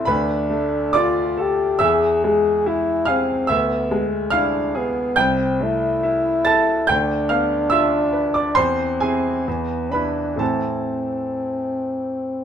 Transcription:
0.00 0.12 C2 medium
0.00 0.12 A3 soft
0.00 0.12 C4 soft
0.00 0.10 E4 medium
0.00 0.12 E4 soft
0.00 0.12 A4 medium
0.00 0.12 C5 medium
0.00 0.12 A5 medium
0.00 0.12 C6 medium
0.05 1.77 D2 medium
0.05 0.90 B4 medium
0.05 0.93 B5 medium
0.11 0.99 D4 medium
0.50 1.21 A3 soft
0.93 1.65 F4 soft
0.93 1.77 D5 medium
0.93 1.81 D6 medium
0.98 1.42 F4 medium
1.37 1.84 G4 medium
1.37 1.81 A4 soft
1.79 3.45 E2 medium
1.79 2.25 G#4 medium
1.79 3.02 E5 medium
1.79 3.06 E6 medium
2.24 2.91 G#3 soft
2.24 2.69 G#4 medium
2.66 3.33 E4 soft
2.66 3.11 E4 medium
3.05 3.49 G#4 soft
3.05 3.46 F5 medium
3.05 3.48 F6 medium
3.10 3.53 C4 medium
3.47 5.14 D2 medium
3.47 4.28 E5 medium
3.47 4.31 E6 medium
3.51 4.08 B3 medium
3.91 4.58 G#3 soft
4.30 4.78 D4 medium
4.30 5.00 E4 soft
4.30 5.13 F5 medium
4.30 5.17 F6 medium
4.75 5.22 B3 medium
4.75 5.18 G#4 soft
5.16 6.85 C2 medium
5.16 6.42 G5 medium
5.16 6.46 G6 medium
5.20 5.65 C4 medium
5.61 6.30 A3 soft
5.61 6.90 E4 medium
6.03 6.72 E4 soft
6.45 6.89 A4 soft
6.45 6.85 A5 medium
6.45 6.88 A6 medium
6.87 8.53 D2 medium
6.87 7.27 G5 medium
6.87 7.30 G6 medium
6.91 8.59 D4 medium
7.29 7.97 B3 soft
7.29 7.68 F5 medium
7.29 7.71 F6 medium
7.70 8.39 F4 soft
7.70 8.31 E5 medium
7.70 8.34 E6 medium
8.13 8.56 B4 soft
8.34 8.55 D5 soft
8.34 8.56 D6 medium
8.55 9.44 E2 soft
8.55 9.49 C4 medium
8.55 8.98 C5 soft
8.55 9.00 C6 medium
9.00 9.43 C4 soft
9.00 9.43 E4 soft
9.00 9.88 G#4 soft
9.00 9.92 G#5 medium
9.47 10.38 E2 soft
9.47 9.93 B3 soft
9.92 10.37 B3 soft
9.92 10.43 D4 soft
9.92 10.37 E4 soft
9.92 10.37 B4 soft
9.92 10.40 B5 medium
10.36 12.44 A2 soft
10.36 12.44 E3 soft
10.36 12.44 C4 soft
10.36 12.44 E4 soft
10.36 12.44 A5 medium
10.40 12.44 C4 soft
10.40 12.44 A4 soft

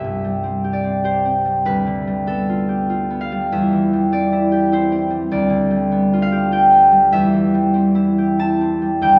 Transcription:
0.00 1.70 C2 soft
0.00 0.63 G4 soft
0.00 1.70 E5 medium
0.04 1.71 G2 soft
0.24 1.44 G3 soft
0.43 0.83 C4 soft
0.64 1.03 G4 soft
0.73 1.26 D5 medium
0.84 1.24 C4 soft
1.04 2.67 G4 soft
1.04 1.69 C5 medium
1.25 1.69 C4 soft
1.45 2.06 G3 soft
1.65 3.53 D2 soft
1.65 3.53 B4 medium
1.87 3.53 D3 soft
2.07 3.31 G3 soft
2.27 3.09 B3 soft
2.27 3.53 A4 medium
2.49 2.88 F4 soft
2.69 4.51 G4 soft
2.90 3.54 F4 soft
3.10 3.54 B3 soft
3.21 3.54 F5 medium
3.32 3.92 G3 soft
3.52 5.36 E2 medium
3.52 5.36 E5 medium
3.73 5.36 E3 soft
3.93 5.09 G3 soft
4.12 4.91 C4 soft
4.12 5.15 D5 medium
4.32 4.71 E4 soft
4.52 6.31 G4 soft
4.72 5.35 E4 soft
4.72 5.36 C5 medium
4.92 5.35 C4 soft
5.10 5.69 G3 soft
5.31 7.15 D2 medium
5.31 7.15 D5 medium
5.50 7.14 D3 soft
5.71 6.90 G3 soft
5.92 6.71 B3 soft
6.13 6.51 F4 soft
6.22 7.16 F5 medium
6.32 8.17 G4 soft
6.52 7.16 F4 soft
6.52 9.01 G5 medium
6.72 7.16 B3 soft
6.92 7.53 G3 soft
7.12 9.06 E2 medium
7.12 9.05 E5 medium
7.33 9.05 E3 soft
7.54 8.81 G3 soft
7.74 8.60 C4 soft
7.95 8.39 E4 soft
8.18 9.19 G4 soft
8.39 9.06 E4 soft
8.39 9.19 A5 medium
8.61 9.05 C4 soft
8.82 9.19 G3 soft
9.02 9.19 D2 medium
9.02 9.19 G5 medium

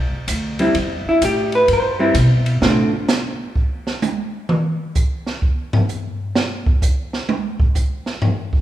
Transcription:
0.00 0.10 C2 medium
0.12 muted upright bass stroke soft
0.28 0.73 D2 medium
0.28 kick soft
0.28 hi-hat pedal medium
0.28 ride medium
0.59 0.74 G3 medium
0.59 0.74 C4 medium
0.59 0.74 E4 medium
0.59 ride soft
0.74 1.04 E2 medium
0.74 kick soft
0.74 ride medium
1.05 1.23 E4 medium
1.05 muted upright bass stroke soft
1.21 1.67 A2 medium
1.21 1.54 G4 medium
1.21 kick soft
1.21 hi-hat pedal medium
1.21 ride medium
1.52 1.69 B4 medium
1.52 ride soft
1.68 2.14 G2 medium
1.68 kick soft
1.68 ride medium
1.73 2.18 C5 medium
1.99 2.14 G3 medium
1.99 2.14 C4 medium
1.99 2.14 E4 medium
2.14 2.60 B2 medium
2.14 kick soft
2.14 hi-hat pedal medium
2.14 ride medium
2.46 ride soft
2.61 2.92 A2 medium
2.61 2.90 D3 soft
2.61 2.90 A3 medium
2.61 2.91 C4 medium
2.61 2.91 F4 soft
2.61 snare medium
3.08 snare medium
3.08 hi-hat pedal medium
3.56 kick medium
3.87 snare soft
4.02 hi-hat pedal medium
4.02 high tom medium
4.49 mid tom medium
4.95 kick medium
4.95 hi-hat pedal medium
5.26 snare soft
5.42 kick medium
5.73 floor tom loud
5.89 hi-hat pedal medium
6.35 snare medium
6.66 kick medium
6.82 kick medium
6.82 hi-hat pedal medium
7.13 snare soft
7.29 high tom medium
7.60 kick medium
7.75 kick medium
7.75 hi-hat pedal medium
8.06 snare soft
8.22 floor tom loud
8.53 kick medium

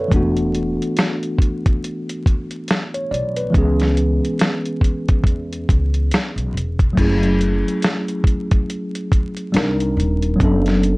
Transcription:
0.00 0.35 A4 medium
0.00 0.13 B4 medium
0.00 0.13 C#5 medium
0.00 0.13 D5 medium
0.00 0.12 E5 medium
0.00 0.13 F#5 medium
0.08 0.75 E1 loud
0.08 3.05 E3 medium
0.08 0.18 G#3 soft
0.08 3.07 B3 medium
0.08 kick loud
0.12 3.08 D4 medium
0.12 3.09 F#4 medium
0.12 closed hi-hat medium
0.16 3.10 A3 medium
0.37 closed hi-hat soft
0.55 closed hi-hat medium
0.82 closed hi-hat soft
0.97 snare loud
0.97 closed hi-hat medium
1.23 closed hi-hat soft
1.38 kick medium
1.38 closed hi-hat medium
1.66 kick medium
1.66 closed hi-hat medium
1.84 closed hi-hat medium
2.09 closed hi-hat medium
2.26 kick medium
2.26 closed hi-hat medium
2.51 closed hi-hat soft
2.68 snare medium
2.68 closed hi-hat medium
2.94 3.11 C#5 medium
2.94 closed hi-hat soft
3.11 3.50 B1 medium
3.11 3.35 D5 medium
3.11 closed hi-hat medium
3.36 3.77 B4 medium
3.36 closed hi-hat soft
3.50 6.91 E3 medium
3.50 6.92 G#3 medium
3.50 6.93 B3 medium
3.50 kick loud
3.55 4.18 C#2 loud
3.55 6.94 C#4 medium
3.55 6.95 G#4 medium
3.55 closed hi-hat medium
3.80 snare soft
3.80 closed hi-hat soft
3.97 closed hi-hat medium
4.25 closed hi-hat soft
4.39 snare loud
4.39 closed hi-hat medium
4.66 closed hi-hat soft
4.81 kick medium
4.81 closed hi-hat medium
5.08 kick medium
5.08 closed hi-hat soft
5.24 5.63 E2 medium
5.24 kick medium
5.24 closed hi-hat medium
5.53 closed hi-hat medium
5.69 6.08 C#2 medium
5.69 kick medium
5.69 closed hi-hat medium
5.94 closed hi-hat soft
6.11 snare medium
6.11 closed hi-hat medium
6.36 6.52 B1 medium
6.36 closed hi-hat soft
6.54 6.93 E1 medium
6.54 closed hi-hat medium
6.79 kick loud
6.79 closed hi-hat soft
6.93 9.48 F#3 medium
6.93 9.49 A3 medium
6.97 7.61 F#1 medium
6.97 9.50 C#4 medium
6.97 9.51 E4 medium
6.97 9.52 G#4 medium
6.97 kick loud
6.97 closed hi-hat medium
6.97 crash medium
7.23 closed hi-hat soft
7.41 closed hi-hat medium
7.68 closed hi-hat soft
7.82 snare loud
7.82 closed hi-hat medium
8.08 closed hi-hat soft
8.24 kick medium
8.24 closed hi-hat medium
8.51 kick medium
8.51 closed hi-hat medium
8.70 closed hi-hat medium
8.95 closed hi-hat medium
9.12 kick medium
9.12 closed hi-hat medium
9.37 closed hi-hat soft
9.52 9.93 C2 medium
9.52 10.39 G3 medium
9.52 10.39 C4 medium
9.52 10.40 D4 medium
9.52 10.40 D#4 medium
9.52 10.41 A#4 medium
9.52 closed hi-hat medium
9.57 snare loud
9.80 closed hi-hat soft
9.97 10.36 D#1 medium
9.97 closed hi-hat medium
10.22 closed hi-hat soft
10.36 10.97 F#3 medium
10.36 10.97 B3 medium
10.40 10.97 F#1 loud
10.40 10.97 C#4 medium
10.40 10.97 D4 medium
10.40 kick loud
10.40 closed hi-hat medium
10.44 10.97 A4 medium
10.66 snare soft
10.66 closed hi-hat soft
10.83 closed hi-hat medium

